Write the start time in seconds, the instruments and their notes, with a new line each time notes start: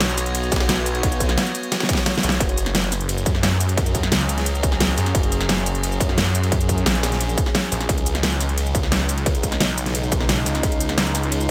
Already playing: detuned saw bass B1, synth drone B3 F#4 C#5
0.01 snare, closed hi-hat, ride
0.09 cabasa
0.18 snare, closed hi-hat, ride, cabasa
0.26 closed hi-hat
0.35 closed hi-hat, ride
0.43 cabasa
0.52 detuned saw bass B1, kick, snare, closed hi-hat, ride, cabasa
0.56 snare, ride
0.60 snare, ride
0.69 snare, closed hi-hat, ride
0.78 snare
0.86 closed hi-hat, ride, cabasa
0.95 closed hi-hat, ride
1.03 kick, closed hi-hat, ride
1.12 closed hi-hat, cabasa
1.20 kick, closed hi-hat, ride, cabasa
1.29 snare, closed hi-hat
1.38 snare, closed hi-hat, ride
1.46 cabasa
1.55 closed hi-hat, ride, cabasa
1.63 closed hi-hat
1.72 snare, closed hi-hat, ride
1.80 snare, ride, cabasa
1.83 snare
1.89 kick, snare, closed hi-hat, ride, cabasa
1.93 snare, ride
1.98 snare, ride
2.06 snare, closed hi-hat, open hi-hat
2.15 snare, ride, cabasa
2.23 detuned saw bass B1, snare, closed hi-hat, ride, cabasa
2.29 snare, closed hi-hat, ride
2.40 detuned saw bass F#1, synth drone F#3 C#4 G#4, kick, closed hi-hat, ride
2.49 closed hi-hat, ride
2.58 closed hi-hat, ride, cabasa
2.66 snare, closed hi-hat
2.75 snare, closed hi-hat, ride
2.83 cabasa
2.92 snare, closed hi-hat, ride, cabasa
3.01 closed hi-hat
3.09 closed hi-hat, ride
3.18 cabasa
3.26 detuned saw bass F#2, kick, closed hi-hat, ride, cabasa
3.35 snare
3.43 snare, closed hi-hat, ride
3.52 snare
3.60 closed hi-hat, ride, cabasa
3.69 closed hi-hat, ride
3.77 kick, closed hi-hat, ride
3.86 closed hi-hat, cabasa
3.95 kick, closed hi-hat, ride, cabasa
4.03 snare, closed hi-hat
4.12 detuned saw bass C#2, snare, closed hi-hat, ride
4.21 cabasa
4.29 closed hi-hat, ride, cabasa
4.38 snare, closed hi-hat
4.46 closed hi-hat, ride
4.55 cabasa
4.63 kick, closed hi-hat, ride, cabasa
4.72 snare
4.80 snare, closed hi-hat, open hi-hat
4.89 ride
4.98 detuned saw bass F#2, snare, closed hi-hat, ride, cabasa
5.06 snare, closed hi-hat, ride
5.15 detuned saw bass F#1, kick, closed hi-hat, ride
5.23 closed hi-hat, ride
5.32 closed hi-hat, ride, cabasa
5.41 snare, closed hi-hat
5.49 snare, closed hi-hat, ride
5.58 cabasa
5.66 closed hi-hat, ride, cabasa
5.75 closed hi-hat
5.83 closed hi-hat, ride
5.92 cabasa
6.00 detuned saw bass F#2, kick, closed hi-hat, ride, cabasa
6.09 snare, ride
6.18 snare, closed hi-hat, ride
6.26 ride
6.35 closed hi-hat, ride, cabasa
6.43 closed hi-hat, ride
6.52 kick, closed hi-hat, ride
6.60 closed hi-hat, ride, cabasa
6.69 kick, closed hi-hat, ride, cabasa
6.78 closed hi-hat
6.86 detuned saw bass A#1, snare, closed hi-hat, ride
6.95 cabasa
7.03 snare, closed hi-hat, ride, cabasa
7.12 snare, closed hi-hat
7.20 closed hi-hat, ride
7.29 cabasa
7.38 kick, closed hi-hat, ride, cabasa
7.46 snare
7.55 snare, closed hi-hat, open hi-hat
7.63 ride
7.72 detuned saw bass A#1, snare, closed hi-hat, ride, cabasa
7.80 snare, closed hi-hat, ride
7.89 detuned saw bass C#2, synth drone C#3 G#3 D#4, kick, closed hi-hat, ride
7.98 closed hi-hat, ride
8.06 closed hi-hat, ride, cabasa
8.15 snare, closed hi-hat
8.23 snare, closed hi-hat, ride
8.32 cabasa
8.40 snare, closed hi-hat, ride, cabasa
8.49 closed hi-hat
8.58 closed hi-hat, ride
8.66 cabasa
8.75 detuned saw bass C#2, kick, closed hi-hat, ride, cabasa
8.83 snare
8.92 snare, closed hi-hat, ride
9.00 snare
9.09 closed hi-hat, ride, cabasa
9.18 closed hi-hat, ride
9.26 kick, closed hi-hat, ride
9.35 closed hi-hat, cabasa
9.43 kick, closed hi-hat, ride, cabasa
9.52 snare, closed hi-hat
9.60 detuned saw bass B1, snare, closed hi-hat, ride
9.69 cabasa
9.78 closed hi-hat, ride, cabasa
9.86 snare, closed hi-hat
9.95 closed hi-hat, ride
10.03 cabasa
10.12 kick, closed hi-hat, ride, cabasa
10.20 snare
10.29 snare, closed hi-hat, open hi-hat
10.38 ride
10.46 detuned saw bass C#2, snare, closed hi-hat, ride, cabasa
10.55 snare, closed hi-hat, ride
10.63 detuned saw bass C#2, kick, closed hi-hat, ride
10.72 closed hi-hat, ride
10.80 closed hi-hat, ride, cabasa
10.89 snare, closed hi-hat
10.98 snare, closed hi-hat, ride
11.06 cabasa
11.15 snare, closed hi-hat, ride, cabasa
11.23 closed hi-hat
11.32 closed hi-hat, ride
11.41 cabasa